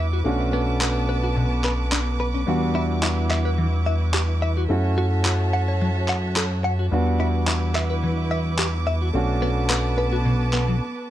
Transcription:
0.00 0.23 E2 medium
0.00 0.22 G3 medium
0.00 0.22 B3 medium
0.00 0.22 D4 medium
0.00 0.23 E4 medium
0.00 0.23 F#4 medium
0.00 4.66 B4 medium
0.00 4.66 D6 medium
0.13 0.19 F#4 medium
0.24 2.45 B1 medium
0.24 2.44 A3 medium
0.24 2.46 B3 medium
0.24 2.44 C#4 medium
0.24 2.45 D4 medium
0.24 2.45 F#4 medium
0.24 2.45 A5 medium
0.53 0.61 B3 medium
0.81 0.86 B3 medium
0.81 clap loud
1.09 1.16 B4 medium
1.24 1.27 F#4 medium
1.37 1.44 B2 medium
1.64 1.72 B4 medium
1.64 clap medium
1.92 1.99 D4 medium
1.92 clap loud
2.20 2.27 B4 medium
2.34 2.41 C#4 medium
2.47 4.67 E2 medium
2.47 4.66 G3 medium
2.47 4.66 B3 medium
2.47 4.67 D4 medium
2.47 4.68 E4 medium
2.47 4.67 F#4 medium
2.75 2.83 E4 medium
3.03 3.07 E4 medium
3.03 clap loud
3.31 3.38 E5 medium
3.31 clap medium
3.45 3.49 B4 medium
3.58 3.66 E3 medium
3.86 3.94 E5 medium
4.14 4.22 G4 medium
4.14 clap loud
4.42 4.49 E5 medium
4.57 4.64 F#4 medium
4.69 6.89 F#2 medium
4.69 6.88 A3 medium
4.69 6.89 C#4 medium
4.69 6.89 E4 medium
4.69 6.90 F#4 medium
4.69 6.89 F#4 medium
4.69 6.90 C#5 medium
4.69 6.90 E5 medium
4.69 6.90 A5 medium
4.98 5.05 F#4 medium
5.25 5.30 F#4 medium
5.25 clap loud
5.53 5.61 F#5 medium
5.68 5.72 C#5 medium
5.81 5.89 F#3 medium
6.08 6.16 F#5 medium
6.08 clap medium
6.36 6.44 A4 medium
6.36 clap loud
6.64 6.72 F#5 medium
6.79 6.86 F#4 medium
6.91 9.12 E2 medium
6.91 9.11 G3 medium
6.91 9.11 B3 medium
6.91 9.11 D4 medium
6.91 9.12 E4 medium
6.91 9.12 F#4 medium
6.91 9.12 B4 medium
6.91 11.10 D6 medium
7.20 7.27 E4 medium
7.47 7.52 E4 medium
7.47 clap loud
7.75 7.83 E5 medium
7.75 clap medium
7.90 7.94 B4 medium
8.04 8.11 E3 medium
8.31 8.38 E5 medium
8.59 8.66 G4 medium
8.59 clap loud
8.87 8.94 E5 medium
9.02 9.08 F#4 medium
9.13 10.81 B1 medium
9.13 10.81 A3 medium
9.13 11.10 B3 medium
9.13 10.81 C#4 medium
9.13 10.81 D4 medium
9.13 10.81 F#4 medium
9.13 11.10 B4 medium
9.13 11.10 A5 medium
9.42 9.49 B3 medium
9.70 9.74 B3 medium
9.70 clap loud
9.98 10.05 B4 medium
10.13 10.16 F#4 medium
10.25 10.33 B2 medium
10.53 10.64 B3 medium
10.53 clap medium
10.68 10.75 F#3 medium

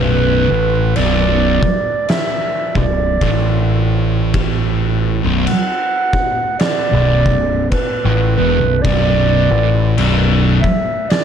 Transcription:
0.00 0.46 B0 loud
0.00 0.48 B1 loud
0.00 0.97 B4 loud
0.50 0.93 A1 medium
0.50 0.95 A2 medium
0.96 1.59 B0 medium
0.96 1.60 B1 loud
0.96 2.11 D5 loud
0.96 crash medium
1.62 muted picked electric bass stroke soft
1.62 muted distorted electric guitar stroke medium
1.62 kick medium
2.09 2.75 E5 loud
2.09 snare loud
2.09 crash medium
2.75 3.18 B0 medium
2.75 3.12 B1 medium
2.75 3.85 D5 medium
2.75 kick medium
3.21 5.19 A1 loud
3.21 5.22 A2 medium
3.21 kick medium
3.21 crash medium
4.34 kick loud
4.34 crash medium
5.23 5.45 B0 loud
5.23 5.45 B1 medium
5.47 6.55 F#5 loud
5.47 crash medium
6.13 kick medium
6.59 7.68 D5 loud
6.59 snare loud
6.59 crash medium
6.92 7.24 B0 medium
6.92 7.23 B1 medium
7.26 7.68 B0 medium
7.26 7.63 B1 medium
7.26 kick medium
7.70 8.33 B4 medium
7.70 kick medium
7.70 crash medium
8.05 8.36 A1 loud
8.05 8.36 A2 loud
8.36 8.60 E1 loud
8.36 8.60 E2 loud
8.36 8.83 B4 loud
8.61 8.83 B0 medium
8.61 8.82 B1 medium
8.82 9.47 B0 medium
8.82 9.48 B1 loud
8.82 10.30 D5 loud
8.82 kick loud
8.82 crash medium
9.51 9.94 A1 loud
9.51 9.96 A2 medium
9.97 10.60 B0 loud
9.97 10.62 B1 loud
9.97 crash medium
10.62 11.11 E5 loud
10.62 muted distorted electric guitar stroke medium
10.62 muted picked electric bass stroke soft
10.62 kick medium
11.09 11.24 D5 loud
11.09 snare loud
11.09 crash medium

